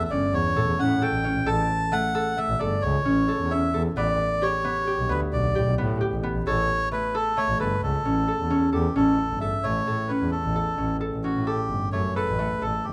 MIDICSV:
0, 0, Header, 1, 4, 480
1, 0, Start_track
1, 0, Tempo, 454890
1, 1551, Time_signature, 11, 3, 24, 8
1, 13643, End_track
2, 0, Start_track
2, 0, Title_t, "Melodica"
2, 0, Program_c, 0, 22
2, 48, Note_on_c, 0, 76, 61
2, 107, Note_on_c, 0, 74, 83
2, 112, Note_off_c, 0, 76, 0
2, 356, Note_on_c, 0, 73, 91
2, 358, Note_off_c, 0, 74, 0
2, 840, Note_on_c, 0, 78, 84
2, 848, Note_off_c, 0, 73, 0
2, 1079, Note_on_c, 0, 79, 92
2, 1083, Note_off_c, 0, 78, 0
2, 1549, Note_on_c, 0, 81, 93
2, 1568, Note_off_c, 0, 79, 0
2, 2030, Note_on_c, 0, 78, 92
2, 2043, Note_off_c, 0, 81, 0
2, 2502, Note_on_c, 0, 76, 91
2, 2523, Note_off_c, 0, 78, 0
2, 2734, Note_on_c, 0, 74, 78
2, 2752, Note_off_c, 0, 76, 0
2, 2970, Note_on_c, 0, 73, 86
2, 2987, Note_off_c, 0, 74, 0
2, 3702, Note_on_c, 0, 76, 88
2, 3719, Note_off_c, 0, 73, 0
2, 4037, Note_off_c, 0, 76, 0
2, 4187, Note_on_c, 0, 74, 92
2, 4670, Note_on_c, 0, 73, 82
2, 4679, Note_off_c, 0, 74, 0
2, 5387, Note_on_c, 0, 71, 76
2, 5407, Note_off_c, 0, 73, 0
2, 5494, Note_off_c, 0, 71, 0
2, 5621, Note_on_c, 0, 74, 78
2, 6067, Note_off_c, 0, 74, 0
2, 6824, Note_on_c, 0, 73, 107
2, 7268, Note_off_c, 0, 73, 0
2, 7307, Note_on_c, 0, 71, 83
2, 7550, Note_off_c, 0, 71, 0
2, 7553, Note_on_c, 0, 69, 85
2, 7781, Note_on_c, 0, 73, 96
2, 7793, Note_off_c, 0, 69, 0
2, 8003, Note_off_c, 0, 73, 0
2, 8023, Note_on_c, 0, 71, 78
2, 8245, Note_off_c, 0, 71, 0
2, 8264, Note_on_c, 0, 69, 73
2, 9181, Note_off_c, 0, 69, 0
2, 9215, Note_on_c, 0, 67, 70
2, 9442, Note_off_c, 0, 67, 0
2, 9460, Note_on_c, 0, 69, 88
2, 9908, Note_off_c, 0, 69, 0
2, 9925, Note_on_c, 0, 76, 81
2, 10164, Note_on_c, 0, 73, 89
2, 10182, Note_off_c, 0, 76, 0
2, 10639, Note_on_c, 0, 71, 75
2, 10670, Note_off_c, 0, 73, 0
2, 10875, Note_off_c, 0, 71, 0
2, 10883, Note_on_c, 0, 69, 77
2, 11575, Note_off_c, 0, 69, 0
2, 11858, Note_on_c, 0, 66, 68
2, 12088, Note_off_c, 0, 66, 0
2, 12091, Note_on_c, 0, 67, 86
2, 12549, Note_off_c, 0, 67, 0
2, 12581, Note_on_c, 0, 73, 80
2, 12811, Note_off_c, 0, 73, 0
2, 12829, Note_on_c, 0, 71, 93
2, 13320, Note_on_c, 0, 69, 85
2, 13329, Note_off_c, 0, 71, 0
2, 13554, Note_on_c, 0, 67, 72
2, 13567, Note_off_c, 0, 69, 0
2, 13643, Note_off_c, 0, 67, 0
2, 13643, End_track
3, 0, Start_track
3, 0, Title_t, "Harp"
3, 0, Program_c, 1, 46
3, 0, Note_on_c, 1, 57, 71
3, 0, Note_on_c, 1, 59, 65
3, 0, Note_on_c, 1, 61, 83
3, 0, Note_on_c, 1, 67, 65
3, 0, Note_on_c, 1, 69, 63
3, 113, Note_off_c, 1, 61, 0
3, 117, Note_on_c, 1, 61, 64
3, 590, Note_off_c, 1, 69, 0
3, 594, Note_on_c, 1, 69, 73
3, 831, Note_off_c, 1, 61, 0
3, 835, Note_on_c, 1, 61, 69
3, 1071, Note_off_c, 1, 69, 0
3, 1075, Note_on_c, 1, 69, 77
3, 1161, Note_off_c, 1, 67, 0
3, 1306, Note_off_c, 1, 61, 0
3, 1310, Note_on_c, 1, 61, 73
3, 1540, Note_off_c, 1, 69, 0
3, 1545, Note_on_c, 1, 69, 90
3, 1721, Note_off_c, 1, 59, 0
3, 2020, Note_off_c, 1, 57, 0
3, 2024, Note_on_c, 1, 57, 71
3, 2262, Note_off_c, 1, 69, 0
3, 2266, Note_on_c, 1, 69, 78
3, 2502, Note_off_c, 1, 57, 0
3, 2506, Note_on_c, 1, 57, 71
3, 2744, Note_off_c, 1, 69, 0
3, 2748, Note_on_c, 1, 69, 71
3, 3218, Note_off_c, 1, 61, 0
3, 3222, Note_on_c, 1, 61, 77
3, 3459, Note_off_c, 1, 69, 0
3, 3463, Note_on_c, 1, 69, 70
3, 3700, Note_off_c, 1, 61, 0
3, 3705, Note_on_c, 1, 61, 69
3, 3940, Note_off_c, 1, 69, 0
3, 3944, Note_on_c, 1, 69, 68
3, 4186, Note_on_c, 1, 59, 86
3, 4661, Note_on_c, 1, 67, 71
3, 4896, Note_off_c, 1, 59, 0
3, 4900, Note_on_c, 1, 59, 82
3, 5134, Note_off_c, 1, 67, 0
3, 5138, Note_on_c, 1, 67, 70
3, 5368, Note_off_c, 1, 59, 0
3, 5372, Note_on_c, 1, 59, 72
3, 5854, Note_off_c, 1, 67, 0
3, 5859, Note_on_c, 1, 67, 70
3, 6018, Note_off_c, 1, 57, 0
3, 6096, Note_off_c, 1, 59, 0
3, 6100, Note_on_c, 1, 59, 74
3, 6262, Note_off_c, 1, 69, 0
3, 6334, Note_off_c, 1, 67, 0
3, 6338, Note_on_c, 1, 67, 76
3, 6573, Note_off_c, 1, 59, 0
3, 6577, Note_on_c, 1, 59, 74
3, 6762, Note_off_c, 1, 61, 0
3, 6825, Note_on_c, 1, 69, 89
3, 7298, Note_on_c, 1, 57, 66
3, 7536, Note_off_c, 1, 69, 0
3, 7540, Note_on_c, 1, 69, 77
3, 7772, Note_off_c, 1, 57, 0
3, 7776, Note_on_c, 1, 57, 70
3, 8012, Note_off_c, 1, 69, 0
3, 8016, Note_on_c, 1, 69, 67
3, 8497, Note_on_c, 1, 61, 67
3, 8730, Note_off_c, 1, 69, 0
3, 8734, Note_on_c, 1, 69, 73
3, 8822, Note_off_c, 1, 67, 0
3, 8969, Note_off_c, 1, 61, 0
3, 8973, Note_on_c, 1, 61, 72
3, 9203, Note_off_c, 1, 69, 0
3, 9208, Note_on_c, 1, 69, 74
3, 9446, Note_off_c, 1, 61, 0
3, 9451, Note_on_c, 1, 61, 79
3, 9855, Note_off_c, 1, 59, 0
3, 9928, Note_off_c, 1, 69, 0
3, 9932, Note_on_c, 1, 69, 59
3, 10172, Note_off_c, 1, 57, 0
3, 10177, Note_on_c, 1, 57, 70
3, 10413, Note_off_c, 1, 69, 0
3, 10417, Note_on_c, 1, 69, 60
3, 10653, Note_off_c, 1, 61, 0
3, 10657, Note_on_c, 1, 61, 60
3, 11134, Note_off_c, 1, 69, 0
3, 11138, Note_on_c, 1, 69, 66
3, 11369, Note_off_c, 1, 61, 0
3, 11373, Note_on_c, 1, 61, 61
3, 11609, Note_off_c, 1, 69, 0
3, 11613, Note_on_c, 1, 69, 70
3, 11856, Note_off_c, 1, 61, 0
3, 11860, Note_on_c, 1, 61, 71
3, 12097, Note_off_c, 1, 69, 0
3, 12101, Note_on_c, 1, 69, 81
3, 12584, Note_off_c, 1, 57, 0
3, 12588, Note_on_c, 1, 57, 65
3, 12829, Note_off_c, 1, 69, 0
3, 12833, Note_on_c, 1, 69, 74
3, 13067, Note_off_c, 1, 57, 0
3, 13071, Note_on_c, 1, 57, 66
3, 13311, Note_off_c, 1, 69, 0
3, 13315, Note_on_c, 1, 69, 64
3, 13643, Note_off_c, 1, 57, 0
3, 13643, Note_off_c, 1, 61, 0
3, 13643, Note_off_c, 1, 69, 0
3, 13643, End_track
4, 0, Start_track
4, 0, Title_t, "Double bass"
4, 0, Program_c, 2, 43
4, 110, Note_on_c, 2, 31, 79
4, 214, Note_off_c, 2, 31, 0
4, 348, Note_on_c, 2, 40, 86
4, 453, Note_off_c, 2, 40, 0
4, 584, Note_on_c, 2, 45, 82
4, 690, Note_off_c, 2, 45, 0
4, 704, Note_on_c, 2, 40, 74
4, 810, Note_off_c, 2, 40, 0
4, 830, Note_on_c, 2, 45, 84
4, 1034, Note_off_c, 2, 45, 0
4, 1184, Note_on_c, 2, 33, 73
4, 1289, Note_off_c, 2, 33, 0
4, 1424, Note_on_c, 2, 33, 72
4, 1528, Note_off_c, 2, 33, 0
4, 1544, Note_on_c, 2, 33, 86
4, 1750, Note_off_c, 2, 33, 0
4, 2623, Note_on_c, 2, 33, 89
4, 2727, Note_off_c, 2, 33, 0
4, 2748, Note_on_c, 2, 31, 81
4, 2951, Note_off_c, 2, 31, 0
4, 2983, Note_on_c, 2, 37, 96
4, 3188, Note_off_c, 2, 37, 0
4, 3218, Note_on_c, 2, 33, 79
4, 3526, Note_off_c, 2, 33, 0
4, 3578, Note_on_c, 2, 40, 72
4, 3784, Note_off_c, 2, 40, 0
4, 3938, Note_on_c, 2, 40, 84
4, 4144, Note_off_c, 2, 40, 0
4, 4180, Note_on_c, 2, 33, 91
4, 4385, Note_off_c, 2, 33, 0
4, 5257, Note_on_c, 2, 35, 85
4, 5361, Note_off_c, 2, 35, 0
4, 5378, Note_on_c, 2, 38, 90
4, 5481, Note_off_c, 2, 38, 0
4, 5622, Note_on_c, 2, 35, 91
4, 5723, Note_off_c, 2, 35, 0
4, 5858, Note_on_c, 2, 45, 81
4, 5961, Note_off_c, 2, 45, 0
4, 5980, Note_on_c, 2, 35, 83
4, 6082, Note_off_c, 2, 35, 0
4, 6105, Note_on_c, 2, 45, 93
4, 6307, Note_off_c, 2, 45, 0
4, 6461, Note_on_c, 2, 33, 80
4, 6562, Note_off_c, 2, 33, 0
4, 6700, Note_on_c, 2, 33, 77
4, 6801, Note_off_c, 2, 33, 0
4, 6815, Note_on_c, 2, 33, 94
4, 7020, Note_off_c, 2, 33, 0
4, 7898, Note_on_c, 2, 33, 87
4, 8000, Note_off_c, 2, 33, 0
4, 8019, Note_on_c, 2, 31, 76
4, 8223, Note_off_c, 2, 31, 0
4, 8251, Note_on_c, 2, 37, 88
4, 8458, Note_off_c, 2, 37, 0
4, 8498, Note_on_c, 2, 33, 78
4, 8804, Note_off_c, 2, 33, 0
4, 8855, Note_on_c, 2, 40, 72
4, 9061, Note_off_c, 2, 40, 0
4, 9213, Note_on_c, 2, 40, 87
4, 9421, Note_off_c, 2, 40, 0
4, 9453, Note_on_c, 2, 33, 75
4, 9660, Note_off_c, 2, 33, 0
4, 9817, Note_on_c, 2, 31, 77
4, 10125, Note_off_c, 2, 31, 0
4, 10177, Note_on_c, 2, 33, 77
4, 10384, Note_off_c, 2, 33, 0
4, 10414, Note_on_c, 2, 45, 77
4, 10623, Note_off_c, 2, 45, 0
4, 10779, Note_on_c, 2, 40, 76
4, 10884, Note_off_c, 2, 40, 0
4, 11017, Note_on_c, 2, 33, 80
4, 11327, Note_off_c, 2, 33, 0
4, 11382, Note_on_c, 2, 33, 79
4, 11589, Note_off_c, 2, 33, 0
4, 11741, Note_on_c, 2, 33, 69
4, 11847, Note_off_c, 2, 33, 0
4, 11978, Note_on_c, 2, 45, 78
4, 12188, Note_off_c, 2, 45, 0
4, 12341, Note_on_c, 2, 31, 79
4, 12448, Note_off_c, 2, 31, 0
4, 12584, Note_on_c, 2, 42, 79
4, 12792, Note_off_c, 2, 42, 0
4, 12944, Note_on_c, 2, 33, 82
4, 13256, Note_off_c, 2, 33, 0
4, 13308, Note_on_c, 2, 33, 72
4, 13516, Note_off_c, 2, 33, 0
4, 13554, Note_on_c, 2, 31, 84
4, 13643, Note_off_c, 2, 31, 0
4, 13643, End_track
0, 0, End_of_file